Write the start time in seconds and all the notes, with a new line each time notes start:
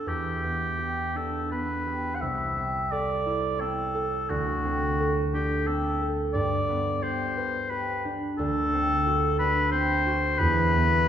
Already playing: G2 B3 D4 G4
0.06 E2 G4
0.44 B3
0.79 G4
1.15 D4 A4
1.51 B3 B4
1.86 G4
2.15 F#5
2.21 C2 E5
2.57 C4
2.92 A4 D5
3.26 E4
3.60 C4 A4
3.95 A4
4.30 D2 F#4
4.65 C4
5.00 A4
5.34 D4 G4
5.67 C4 A4
6.01 A4
6.33 G2 D5
6.69 B3
7.03 G4 C5
7.37 B4
7.70 G4 B4
8.05 D4
8.38 D2 A4
8.73 C4
9.07 F#4
9.39 D4 B4
9.71 C4 C5
10.06 F#4
10.39 E2 B4
10.73 B3